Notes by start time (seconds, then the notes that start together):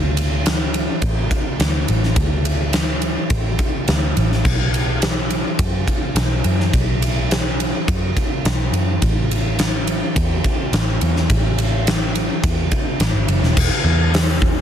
Already playing: D2
0.17 ride
0.46 snare, ride
0.74 ride
1.02 A1, kick, ride
1.31 kick, ride
1.59 D2, snare, ride
1.88 A1, ride
2.03 snare
2.16 D2, kick, ride
2.45 ride
2.73 snare, ride
3.02 ride
3.30 A1, kick, ride
3.59 kick, ride
3.88 D2, snare, ride
4.17 A1, ride
4.32 snare
4.45 B1, kick, crash
4.74 ride
5.02 snare, ride
5.30 ride
5.59 F#2, kick, ride
5.88 kick, ride
6.15 B1, snare, ride
6.44 F#2, ride
6.60 snare
6.73 B1, kick, ride
7.02 ride
7.31 snare, ride
7.60 ride
7.88 F#2, kick, ride
8.17 kick, ride
8.45 B1, snare, ride
8.72 F#2, ride
9.02 A1, kick, ride
9.31 ride
9.59 snare, ride
9.87 ride
10.16 E2, kick, ride
10.44 kick, ride
10.73 A1, snare, ride
11.01 E2, ride
11.16 snare
11.30 A1, kick, ride
11.58 ride
11.87 snare, ride
12.15 ride
12.44 E2, kick, ride
12.71 kick, ride
13.00 A1, snare, ride
13.14 G#1
13.27 F#1, ride
13.42 E1, snare
13.57 E1, kick, crash
13.84 E2
14.14 snare, open hi-hat
14.42 kick